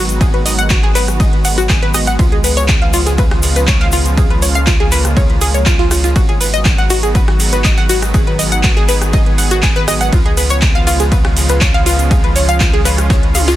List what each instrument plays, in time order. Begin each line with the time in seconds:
Already playing: analog synth bass G#1, supersaw synth D#3 F#3 G#3 B3 F#4
0.09 closed hi-hat, shaker
0.21 synth pluck G#4, kick, closed hi-hat, ride, shaker
0.34 synth pluck B4, closed hi-hat
0.46 synth pluck D#5, open hi-hat, shaker
0.58 synth pluck F#5, closed hi-hat, shaker
0.69 synth pluck F#4, kick, snare, clap, closed hi-hat, ride, shaker
0.83 synth pluck G#4, closed hi-hat
0.95 synth pluck B4, clap, open hi-hat, ride, shaker
1.08 cross-stick, closed hi-hat, shaker
1.20 synth pluck D#5, kick, closed hi-hat, ride, shaker
1.33 closed hi-hat
1.45 synth pluck F#5, open hi-hat, ride, shaker
1.58 synth pluck F#4, closed hi-hat, shaker
1.69 synth pluck G#4, kick, snare, clap, closed hi-hat, ride, shaker
1.82 synth pluck B4, closed hi-hat
1.94 synth pluck D#5, cross-stick, open hi-hat, ride, shaker
2.07 synth pluck F#5, snare, closed hi-hat, shaker
2.19 analog synth bass C#2, supersaw synth C#3 F3 F4, synth pluck F4, kick, closed hi-hat, ride, shaker
2.32 synth pluck G#4, closed hi-hat, ride
2.44 synth pluck B4, open hi-hat, ride, shaker
2.57 synth pluck C#5, closed hi-hat, shaker
2.68 kick, snare, clap, closed hi-hat, ride, shaker
2.82 synth pluck F5, closed hi-hat
2.93 synth pluck F4, open hi-hat, ride, shaker
3.07 synth pluck G#4, snare, closed hi-hat, shaker
3.18 synth pluck B4, kick, closed hi-hat, ride, shaker
3.31 cross-stick, snare, closed hi-hat
3.42 snare, open hi-hat, ride, shaker
3.56 synth pluck B4, snare, closed hi-hat, shaker
3.67 synth pluck C#5, kick, snare, clap, closed hi-hat, ride, shaker
3.81 synth pluck F5, snare, clap, closed hi-hat
3.92 synth pluck F4, open hi-hat, ride, shaker
4.05 closed hi-hat, shaker
4.17 supersaw synth A#3, synth pluck G#4, kick, closed hi-hat, ride, shaker
4.30 synth pluck B4, closed hi-hat
4.42 synth pluck C#5, open hi-hat, shaker
4.55 synth pluck F5, shaker
4.67 synth pluck F4, kick, snare, clap, closed hi-hat, ride, shaker
4.80 synth pluck G#4, closed hi-hat
4.92 synth pluck B4, clap, open hi-hat, ride, shaker
5.05 cross-stick, closed hi-hat, shaker
5.17 synth pluck C#5, kick, closed hi-hat, ride, shaker
5.30 closed hi-hat
5.41 synth pluck G#4, open hi-hat, ride, shaker
5.54 synth pluck C#5, closed hi-hat, shaker
5.66 synth pluck F4, kick, clap, closed hi-hat, ride, shaker
5.79 synth pluck F4, snare, closed hi-hat
5.91 synth pluck F4, cross-stick, snare, open hi-hat, ride, shaker
6.04 synth pluck F4, snare, closed hi-hat, shaker
6.16 analog synth bass G#1, supersaw synth D#3 F#3 B3 F#4, synth pluck F#4, kick, closed hi-hat, ride, shaker
6.29 synth pluck G#4, closed hi-hat, ride
6.41 synth pluck B4, open hi-hat, ride, shaker
6.54 synth pluck D#5, closed hi-hat, shaker
6.65 kick, snare, clap, closed hi-hat, ride, shaker
6.78 synth pluck F#5, closed hi-hat
6.90 synth pluck F#4, open hi-hat, ride, shaker
7.03 synth pluck G#4, closed hi-hat, shaker
7.15 synth pluck B4, kick, closed hi-hat, ride, shaker
7.28 cross-stick, snare, closed hi-hat
7.39 snare, open hi-hat, ride, shaker
7.52 synth pluck B4, snare, closed hi-hat, shaker
7.64 synth pluck D#5, kick, snare, clap, closed hi-hat, ride, shaker
7.77 synth pluck F#5, snare, clap, closed hi-hat
7.89 synth pluck F#4, open hi-hat, ride, shaker
8.02 cross-stick, closed hi-hat, shaker
8.14 supersaw synth G#4, synth pluck G#4, kick, closed hi-hat, ride, shaker
8.27 synth pluck B4, closed hi-hat
8.39 synth pluck D#5, open hi-hat, shaker
8.52 synth pluck F#5, closed hi-hat, shaker
8.63 synth pluck F#4, kick, snare, clap, closed hi-hat, ride, shaker
8.77 synth pluck G#4, closed hi-hat
8.88 synth pluck B4, clap, open hi-hat, ride, shaker
9.02 cross-stick, closed hi-hat, shaker
9.13 synth pluck D#5, kick, closed hi-hat, ride, shaker
9.26 closed hi-hat
9.38 synth pluck F#5, open hi-hat, ride, shaker
9.51 synth pluck F#4, closed hi-hat, shaker
9.63 synth pluck G#4, kick, snare, clap, closed hi-hat, ride, shaker
9.76 synth pluck B4, closed hi-hat
9.88 synth pluck D#5, cross-stick, open hi-hat, ride, shaker
10.01 synth pluck F#5, snare, closed hi-hat, shaker
10.13 analog synth bass C#2, supersaw synth C#3 F3 G#3 F4, synth pluck F4, kick, closed hi-hat, ride, shaker
10.26 synth pluck G#4, closed hi-hat, ride
10.37 synth pluck B4, open hi-hat, ride, shaker
10.50 synth pluck C#5, closed hi-hat, shaker
10.62 kick, snare, clap, closed hi-hat, ride, shaker
10.75 synth pluck F5, closed hi-hat
10.87 synth pluck F4, open hi-hat, ride, shaker
11.00 synth pluck G#4, snare, closed hi-hat, shaker
11.12 synth pluck B4, kick, closed hi-hat, ride, shaker
11.25 cross-stick, snare, closed hi-hat
11.37 snare, open hi-hat, ride, shaker
11.49 synth pluck B4, snare, closed hi-hat, shaker
11.61 synth pluck C#5, kick, snare, clap, closed hi-hat, ride, shaker
11.74 synth pluck F5, snare, clap, closed hi-hat
11.86 synth pluck F4, open hi-hat, ride, shaker
11.99 closed hi-hat, shaker
12.11 supersaw synth C#4, synth pluck G#4, kick, closed hi-hat, ride, shaker
12.24 synth pluck B4, closed hi-hat
12.36 synth pluck C#5, open hi-hat, shaker
12.48 synth pluck F5, closed hi-hat, shaker
12.60 synth pluck F4, kick, snare, clap, closed hi-hat, ride, shaker
12.73 synth pluck G#4, closed hi-hat
12.85 synth pluck B4, clap, open hi-hat, ride, shaker
12.98 cross-stick, closed hi-hat, shaker
13.10 synth pluck C#5, kick, snare, closed hi-hat, ride, shaker
13.23 closed hi-hat
13.35 synth pluck F5, open hi-hat, high tom, ride, shaker
13.48 synth pluck F4, snare, closed hi-hat, ride, shaker